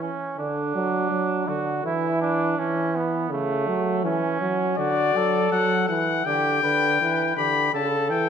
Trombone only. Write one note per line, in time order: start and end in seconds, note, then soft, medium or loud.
0.38 0.72 D3 medium
0.75 1.11 F#3 medium
1.11 1.47 F#3 medium
1.48 1.84 D3 medium
1.84 2.56 E3 medium
2.57 3.32 E3 medium
3.31 3.69 C#3 medium
3.67 4.05 F#3 medium
4.04 4.40 E3 medium
4.41 4.77 F#3 medium
4.77 5.14 D3 medium
5.15 5.51 F#3 medium
5.52 5.88 F#3 medium
5.89 6.25 E3 medium
6.26 6.62 D3 medium
6.63 6.99 D3 medium
7.01 7.36 E3 medium
7.37 7.73 D3 medium
7.73 8.11 C#3 medium
8.10 8.29 E3 medium